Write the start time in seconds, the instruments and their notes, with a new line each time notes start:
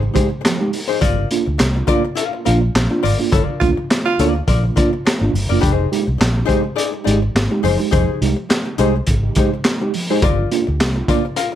0.02 muted hollow-body jazz guitar stroke
0.14 tine electric piano G#3 D#4 G4, hollow-body jazz guitar D#4 G#4 C5, kick, closed hi-hat
0.29 muted hollow-body jazz guitar stroke
0.41 tine electric piano F3, muted hollow-body jazz guitar stroke
0.45 snare, clap, closed hi-hat
0.58 tine electric piano G#3 D#4 G4, muted hollow-body jazz guitar stroke
0.73 tine electric piano D#4 G4, open hi-hat
0.88 hollow-body jazz guitar D#4 G#4 C5
1.01 fingered electric bass G1, tine electric piano G2 D3, hollow-body jazz guitar F4 A#4 D5, kick, closed hi-hat
1.18 tine electric piano D4 F4
1.31 tine electric piano A#3 D4 F4, closed hi-hat
1.46 fingered electric bass D2, muted hollow-body jazz guitar stroke
1.58 fingered electric bass C2, muted hollow-body jazz guitar stroke, snare, clap, closed hi-hat
1.76 muted hollow-body jazz guitar stroke
1.87 tine electric piano A#3 D4 F4, hollow-body jazz guitar F4 A#4 D5, kick, closed hi-hat
2.05 muted hollow-body jazz guitar stroke
2.15 hollow-body jazz guitar F4 A#4 F5, closed hi-hat
2.33 muted hollow-body jazz guitar stroke
2.45 fingered electric bass A#1, tine electric piano A#3 D4 F4, hollow-body jazz guitar F4 A#4 F5, closed hi-hat
2.61 muted hollow-body jazz guitar stroke
2.75 fingered electric bass A#1, snare, clap, closed hi-hat
2.90 tine electric piano A#3 D4 F4, muted hollow-body jazz guitar stroke
3.03 fingered electric bass G#1, tine electric piano G2 D3, hollow-body jazz guitar F4 A#4 D5, open hi-hat
3.19 tine electric piano A#3 D4 F4, muted hollow-body jazz guitar stroke
3.32 fingered electric bass G1, tine electric piano G2 D3, hollow-body jazz guitar E4 A4 C#5, kick, closed hi-hat
3.43 hollow-body jazz guitar F4 A#4 D5
3.49 tine electric piano D4 F4
3.60 fingered electric bass D2, tine electric piano A#3 D4 F4, tenor saxophone F4, kick, closed hi-hat
3.77 muted hollow-body jazz guitar stroke
3.90 muted hollow-body jazz guitar stroke, snare, clap, closed hi-hat
4.06 tenor saxophone F4, muted hollow-body jazz guitar stroke
4.19 fingered electric bass D2, tine electric piano A#3 D4 F4, hollow-body jazz guitar F4 A#4 D5, closed hi-hat
4.35 muted hollow-body jazz guitar stroke
4.47 fingered electric bass A#1, hollow-body jazz guitar F4 A#4 D5, kick, closed hi-hat
4.64 muted hollow-body jazz guitar stroke
4.76 tine electric piano A#3 D4 F4, hollow-body jazz guitar F4 A#4 D5, kick, closed hi-hat
4.93 muted hollow-body jazz guitar stroke
5.05 muted hollow-body jazz guitar stroke, snare, clap, closed hi-hat
5.20 fingered electric bass G#1, tine electric piano A#3 D4 F4, muted hollow-body jazz guitar stroke
5.33 fingered electric bass G1, tine electric piano G2 D3, open hi-hat
5.49 fingered electric bass F#1, tine electric piano A#3 D4 F4, hollow-body jazz guitar F4 A#4 D5
5.61 fingered electric bass F1, hollow-body jazz guitar D4 G4 B4, kick, closed hi-hat
5.65 tine electric piano F3
5.72 hollow-body jazz guitar D#4 G#4 C5
5.79 tine electric piano D#4 G4
5.92 tine electric piano G#3 D#4 G4, closed hi-hat
6.07 fingered electric bass C2, muted hollow-body jazz guitar stroke
6.18 fingered electric bass A#1, muted hollow-body jazz guitar stroke, snare, clap, closed hi-hat
6.34 muted hollow-body jazz guitar stroke
6.46 tine electric piano G#3 D#4 G4, hollow-body jazz guitar D#4 G#4 C5, kick, closed hi-hat
6.63 muted hollow-body jazz guitar stroke
6.76 hollow-body jazz guitar D#4 G#4 D5, closed hi-hat
6.93 muted hollow-body jazz guitar stroke
7.04 fingered electric bass G#1, tine electric piano G#3 D#4 G4, hollow-body jazz guitar D#4 G#4 D5, closed hi-hat
7.22 muted hollow-body jazz guitar stroke
7.35 fingered electric bass G#1, snare, clap, closed hi-hat
7.51 tine electric piano G#3 D#4 G4, muted hollow-body jazz guitar stroke
7.63 fingered electric bass F#1, tine electric piano F3, hollow-body jazz guitar D#4 G#4 C5, open hi-hat
7.78 tine electric piano G#3 D#4 G4, muted hollow-body jazz guitar stroke
7.91 fingered electric bass F1, tine electric piano F3, hollow-body jazz guitar D#4 G#4 C5, kick, closed hi-hat
8.10 tine electric piano D#4 G4
8.21 fingered electric bass C2, tine electric piano G#3 D#4 G4, closed hi-hat
8.36 muted hollow-body jazz guitar stroke
8.49 muted hollow-body jazz guitar stroke, snare, clap, closed hi-hat
8.65 muted hollow-body jazz guitar stroke
8.78 fingered electric bass C2, tine electric piano G#3 D#4 G4, hollow-body jazz guitar D#4 G#4 C5, closed hi-hat
8.96 muted hollow-body jazz guitar stroke
9.07 fingered electric bass G#1, muted hollow-body jazz guitar stroke, kick, closed hi-hat
9.35 tine electric piano G#3 D#4 G4, hollow-body jazz guitar D#4 G#4 C5, kick, closed hi-hat
9.54 muted hollow-body jazz guitar stroke
9.65 muted hollow-body jazz guitar stroke, snare, clap, closed hi-hat
9.81 tine electric piano G#3 D#4 G4, muted hollow-body jazz guitar stroke
9.94 tine electric piano F3, open hi-hat
10.10 tine electric piano G#3 D#4 G4, hollow-body jazz guitar D#4 G#4 C5
10.22 fingered electric bass G1, tine electric piano G2 D3, hollow-body jazz guitar F4 A#4 D5, kick, closed hi-hat
10.39 tine electric piano D4 F4
10.51 tine electric piano A#3 D4 F4, closed hi-hat
10.67 fingered electric bass D2, muted hollow-body jazz guitar stroke
10.80 fingered electric bass C2, muted hollow-body jazz guitar stroke, snare, clap, closed hi-hat
10.96 muted hollow-body jazz guitar stroke
11.08 tine electric piano A#3 D4 F4, hollow-body jazz guitar F4 A#4 D5, kick, closed hi-hat
11.25 muted hollow-body jazz guitar stroke
11.36 hollow-body jazz guitar F4 A#4 F5, closed hi-hat